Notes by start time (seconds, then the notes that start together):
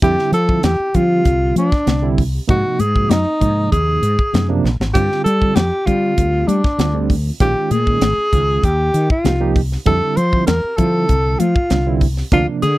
0.02 F2 D3 G3 C4 E4 G4, kick, closed hi-hat, muted conga
0.19 snare
0.32 F3 A4, closed hi-hat, muted conga
0.49 D3 G3 C4 E4, kick
0.63 E2 G4, snare, closed hi-hat, high conga
0.80 C4 E4, muted fretless electric bass stroke
0.94 D3 F3 G3 C4 F4 G4, kick, closed hi-hat
1.25 C2, kick, closed hi-hat, muted conga
1.56 F3 D4, closed hi-hat, high conga
1.72 kick, snare
1.87 C2 D3 G3 C4 D4, snare, closed hi-hat, high conga
2.02 D3 G3 C4 E4
2.18 kick, open hi-hat, muted conga
2.34 C4 G4
2.47 G#2 C3 F3 A#3 D#4 F#4, kick, closed hi-hat, muted conga
2.79 G#2 G#4, closed hi-hat, muted conga, high conga
2.95 C3 F3 A#3 F#4, kick
3.10 F#2 D#4, snare, closed hi-hat, high conga
3.26 A#3 C4, muted fretless electric bass stroke
3.41 G#2 C3 F3 A#3 D#4, kick, closed hi-hat
3.72 D#2 G#4, kick, closed hi-hat, muted conga
4.02 G#2, closed hi-hat
4.19 kick
4.33 F#2 C3 F3 A#3 D#4, snare, closed hi-hat, high conga, low conga
4.49 C3 F3 A#3 D4
4.64 A#1, snare, muted conga
4.80 G#1 A#3 D#4, snare
4.93 G2 D3 G3 C4 F4 G4, kick, closed hi-hat, muted conga
5.12 snare
5.24 G3 A4, closed hi-hat, muted conga
5.41 D3 G3 C4 F4, kick
5.55 F2 G4, snare, closed hi-hat, high conga
5.72 C4 F4, muted fretless electric bass stroke
5.86 D3 G3 C4 F4 G4, kick, closed hi-hat
6.18 D2, kick, closed hi-hat, muted conga
6.47 G3 D4, closed hi-hat, high conga
6.64 kick, snare
6.78 D2 D3 G3 C4 F4, snare, closed hi-hat, high conga
6.94 D3 G3 C4 D4
7.10 kick, open hi-hat, muted conga
7.26 C4 F4
7.40 A#1 D#3 G#3 C#4 F4 G4, kick, closed hi-hat, muted conga
7.71 A#2 G#4, closed hi-hat, muted conga, high conga
7.87 D#3 G#3 C#4 D#4, kick
8.01 G#1, snare, closed hi-hat, high conga
8.18 C#4 G#4, muted fretless electric bass stroke
8.33 C#2 D#3 G#3 C#4 F4, kick, closed hi-hat
8.63 D#2 G4, kick, closed hi-hat, muted conga
8.94 D#3, closed hi-hat
9.10 F4, kick
9.25 C2 F3 A#3 D#4 G4, snare, closed hi-hat, high conga, low conga
9.40 F3 A#3 D#4 G4
9.56 kick, open hi-hat, muted conga
9.71 D#4 G4, snare
9.86 F2 D3 G3 C4 E4 A4, kick, closed hi-hat, muted conga
10.17 F3 C5, closed hi-hat, muted conga
10.33 D3 G3 C4 E4, kick
10.46 E2 A#4, snare, closed hi-hat, high conga
10.64 C4 G4, muted fretless electric bass stroke
10.77 D3 F3 G3 C4 E4 A4, kick, closed hi-hat
11.09 C2, kick, closed hi-hat, muted conga
11.39 F3 F4, closed hi-hat, high conga
11.56 kick
11.70 C2 D3 G3 C4 D4, snare, closed hi-hat, high conga
11.87 D3 G3 C4 E4
12.01 kick, open hi-hat, muted conga
12.17 C4 G4, snare
12.32 D2 C3 F3 A#3 D4 F4, kick, closed hi-hat, muted conga
12.62 D3 G#4, closed hi-hat, muted conga, high conga